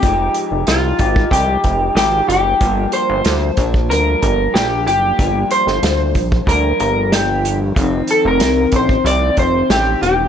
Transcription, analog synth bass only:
\new Staff \with { instrumentName = "Analog synth bass" } { \clef bass \time 4/4 \key g \minor \tempo 4 = 93 f,,8 r16 f,,16 c,8 aes,,8 c,8 f,,8 aes,,8 ges,,8 | g,,8 r16 g,,16 d,8 bes,,8 d,8 g,,8 bes,,8 ges,,8 | g,,8 r16 g,,16 d,8 bes,,8 d,8 g,,4. | f,,8 r16 f,,16 c,8 a,,8 c,8 f,,8 a,,8 e,,8 | }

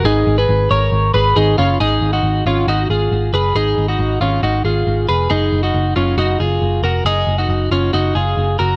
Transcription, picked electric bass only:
\new Staff \with { instrumentName = "Picked electric bass" } { \clef bass \time 4/4 \key gis \dorian \tempo 4 = 137 gis,,8 gis,,8 gis,,8 gis,,8 gis,,8 gis,,8 gis,,8 fis,,8 | gis,,8 gis,,8 gis,,8 gis,,8 gis,,8 gis,,8 gis,,8 fis,,8 | gis,,8 gis,,8 gis,,8 gis,,8 gis,,8 gis,,8 gis,,8 eis,,8 | fis,,8 fis,,8 fis,,8 fis,,8 fis,,8 fis,,8 fis,,8 eis,,8 |
fis,,8 fis,,8 fis,,8 fis,,8 fis,,8 fis,,8 fis,,8 fis,,8 | }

